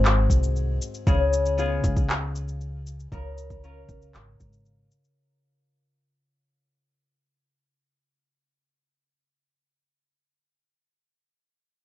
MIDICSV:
0, 0, Header, 1, 4, 480
1, 0, Start_track
1, 0, Tempo, 512821
1, 998, Time_signature, 4, 2, 24, 8
1, 11088, End_track
2, 0, Start_track
2, 0, Title_t, "Harp"
2, 0, Program_c, 0, 46
2, 0, Note_on_c, 0, 44, 79
2, 0, Note_on_c, 0, 51, 80
2, 0, Note_on_c, 0, 60, 57
2, 0, Note_on_c, 0, 63, 63
2, 0, Note_on_c, 0, 66, 61
2, 0, Note_on_c, 0, 68, 66
2, 1000, Note_on_c, 0, 49, 84
2, 1005, Note_off_c, 0, 68, 0
2, 1009, Note_on_c, 0, 68, 69
2, 1044, Note_off_c, 0, 44, 0
2, 1056, Note_off_c, 0, 60, 0
2, 1475, Note_on_c, 0, 59, 57
2, 1483, Note_on_c, 0, 65, 57
2, 1485, Note_off_c, 0, 68, 0
2, 1488, Note_on_c, 0, 68, 63
2, 1539, Note_off_c, 0, 66, 0
2, 1952, Note_off_c, 0, 63, 0
2, 2912, Note_off_c, 0, 49, 0
2, 2921, Note_on_c, 0, 49, 77
2, 2929, Note_on_c, 0, 70, 68
2, 2985, Note_off_c, 0, 59, 0
2, 3367, Note_off_c, 0, 51, 0
2, 3403, Note_on_c, 0, 61, 53
2, 3406, Note_off_c, 0, 65, 0
2, 3410, Note_on_c, 0, 65, 53
2, 3412, Note_off_c, 0, 70, 0
2, 3416, Note_on_c, 0, 70, 57
2, 3617, Note_off_c, 0, 68, 0
2, 6791, Note_off_c, 0, 70, 0
2, 7424, Note_off_c, 0, 65, 0
2, 8014, Note_off_c, 0, 61, 0
2, 9127, Note_off_c, 0, 49, 0
2, 11088, End_track
3, 0, Start_track
3, 0, Title_t, "Upright bass"
3, 0, Program_c, 1, 32
3, 0, Note_on_c, 1, 32, 95
3, 237, Note_off_c, 1, 32, 0
3, 278, Note_on_c, 1, 36, 78
3, 716, Note_off_c, 1, 36, 0
3, 1005, Note_on_c, 1, 37, 82
3, 1679, Note_off_c, 1, 37, 0
3, 1723, Note_on_c, 1, 37, 87
3, 2878, Note_off_c, 1, 37, 0
3, 2921, Note_on_c, 1, 37, 88
3, 3597, Note_off_c, 1, 37, 0
3, 3637, Note_on_c, 1, 37, 91
3, 3879, Note_off_c, 1, 37, 0
3, 3884, Note_on_c, 1, 32, 70
3, 4068, Note_off_c, 1, 32, 0
3, 4122, Note_on_c, 1, 32, 72
3, 4558, Note_off_c, 1, 32, 0
3, 11088, End_track
4, 0, Start_track
4, 0, Title_t, "Drums"
4, 50, Note_on_c, 9, 39, 74
4, 51, Note_on_c, 9, 82, 33
4, 144, Note_off_c, 9, 39, 0
4, 145, Note_off_c, 9, 82, 0
4, 279, Note_on_c, 9, 36, 60
4, 287, Note_on_c, 9, 82, 75
4, 372, Note_off_c, 9, 36, 0
4, 380, Note_off_c, 9, 82, 0
4, 407, Note_on_c, 9, 82, 44
4, 500, Note_off_c, 9, 82, 0
4, 526, Note_on_c, 9, 82, 32
4, 620, Note_off_c, 9, 82, 0
4, 766, Note_on_c, 9, 82, 65
4, 859, Note_off_c, 9, 82, 0
4, 884, Note_on_c, 9, 82, 40
4, 978, Note_off_c, 9, 82, 0
4, 1000, Note_on_c, 9, 36, 119
4, 1004, Note_on_c, 9, 82, 33
4, 1094, Note_off_c, 9, 36, 0
4, 1098, Note_off_c, 9, 82, 0
4, 1247, Note_on_c, 9, 82, 77
4, 1341, Note_off_c, 9, 82, 0
4, 1365, Note_on_c, 9, 82, 42
4, 1459, Note_off_c, 9, 82, 0
4, 1483, Note_on_c, 9, 82, 32
4, 1576, Note_off_c, 9, 82, 0
4, 1721, Note_on_c, 9, 36, 103
4, 1722, Note_on_c, 9, 82, 76
4, 1814, Note_off_c, 9, 36, 0
4, 1816, Note_off_c, 9, 82, 0
4, 1841, Note_on_c, 9, 36, 106
4, 1842, Note_on_c, 9, 82, 40
4, 1934, Note_off_c, 9, 36, 0
4, 1935, Note_off_c, 9, 82, 0
4, 1963, Note_on_c, 9, 39, 76
4, 1964, Note_on_c, 9, 82, 29
4, 2057, Note_off_c, 9, 39, 0
4, 2058, Note_off_c, 9, 82, 0
4, 2205, Note_on_c, 9, 82, 76
4, 2299, Note_off_c, 9, 82, 0
4, 2325, Note_on_c, 9, 82, 41
4, 2419, Note_off_c, 9, 82, 0
4, 2443, Note_on_c, 9, 82, 29
4, 2537, Note_off_c, 9, 82, 0
4, 2683, Note_on_c, 9, 82, 68
4, 2777, Note_off_c, 9, 82, 0
4, 2807, Note_on_c, 9, 82, 37
4, 2900, Note_off_c, 9, 82, 0
4, 2919, Note_on_c, 9, 36, 107
4, 2924, Note_on_c, 9, 82, 28
4, 3013, Note_off_c, 9, 36, 0
4, 3018, Note_off_c, 9, 82, 0
4, 3163, Note_on_c, 9, 82, 72
4, 3257, Note_off_c, 9, 82, 0
4, 3280, Note_on_c, 9, 36, 93
4, 3281, Note_on_c, 9, 82, 38
4, 3373, Note_off_c, 9, 36, 0
4, 3375, Note_off_c, 9, 82, 0
4, 3405, Note_on_c, 9, 82, 29
4, 3499, Note_off_c, 9, 82, 0
4, 3640, Note_on_c, 9, 36, 97
4, 3640, Note_on_c, 9, 82, 65
4, 3734, Note_off_c, 9, 36, 0
4, 3734, Note_off_c, 9, 82, 0
4, 3763, Note_on_c, 9, 82, 40
4, 3856, Note_off_c, 9, 82, 0
4, 3881, Note_on_c, 9, 39, 69
4, 3882, Note_on_c, 9, 82, 31
4, 3974, Note_off_c, 9, 39, 0
4, 3976, Note_off_c, 9, 82, 0
4, 4119, Note_on_c, 9, 36, 56
4, 4120, Note_on_c, 9, 82, 67
4, 4212, Note_off_c, 9, 36, 0
4, 4214, Note_off_c, 9, 82, 0
4, 4240, Note_on_c, 9, 82, 39
4, 4333, Note_off_c, 9, 82, 0
4, 4359, Note_on_c, 9, 82, 29
4, 4452, Note_off_c, 9, 82, 0
4, 4599, Note_on_c, 9, 82, 65
4, 4693, Note_off_c, 9, 82, 0
4, 4721, Note_on_c, 9, 82, 40
4, 4815, Note_off_c, 9, 82, 0
4, 11088, End_track
0, 0, End_of_file